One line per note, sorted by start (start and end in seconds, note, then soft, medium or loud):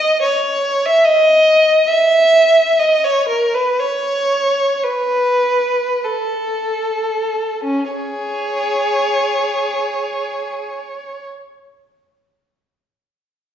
0.00 0.23 D#5 medium
0.22 0.82 C#5 medium
0.85 1.04 E5 medium
1.04 1.88 D#5 medium
1.88 2.79 E5 medium
2.79 3.03 D#5 medium
3.04 3.28 C#5 medium
3.29 3.52 A#4 medium
3.54 3.78 B4 medium
3.80 4.83 C#5 medium
4.84 6.02 B4 medium
6.04 7.63 A4 medium
7.64 7.89 C#4 medium
7.90 10.60 G#4 soft
7.90 11.22 C#5 medium